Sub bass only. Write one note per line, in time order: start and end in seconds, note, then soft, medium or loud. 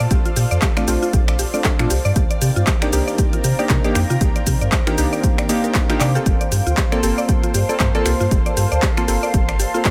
0.11 0.20 A#1 loud
0.36 0.45 A#2 loud
0.51 0.58 F2 loud
0.88 0.97 A#1 loud
1.13 1.45 A#1 loud
1.79 1.86 A#2 medium
1.90 1.99 C2 medium
2.05 2.12 G2 loud
2.16 2.25 C2 medium
2.42 2.51 C3 loud
2.56 2.63 G2 loud
2.93 3.02 C2 loud
3.44 3.53 C3 medium
3.70 3.79 C3 medium
3.95 4.04 F2 loud
4.10 4.17 C3 medium
4.21 4.30 C2 loud
4.47 4.56 C3 loud
4.61 4.68 G2 medium
4.98 5.07 C2 loud
6.00 6.18 C3 loud
6.26 6.35 G1 medium
6.52 6.61 G2 loud
6.67 6.73 D2 medium
7.03 7.12 G1 loud
7.54 7.63 G2 medium
7.80 7.89 G2 medium
8.06 8.15 C2 loud
8.20 8.27 G2 medium
8.31 8.40 G1 loud
8.57 8.66 G2 loud
8.72 8.78 D2 medium
9.08 9.17 G1 loud
9.34 9.65 G1 loud